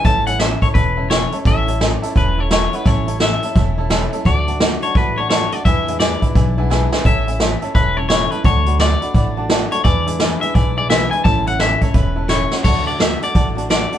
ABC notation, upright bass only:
X:1
M:4/4
L:1/8
Q:"Swing" 1/4=172
K:A
V:1 name="Upright bass" clef=bass
A,,,4 E,,,4 | A,,,4 E,,,4 | A,,,4 E,,,4 | D,,4 A,,,4 |
E,,4 B,,,4 | A,,,4 E,,,4 | D,,4 A,,,4 | E,,4 B,,,4 |
A,,,4 E,,,4 | D,,4 A,,,4 |]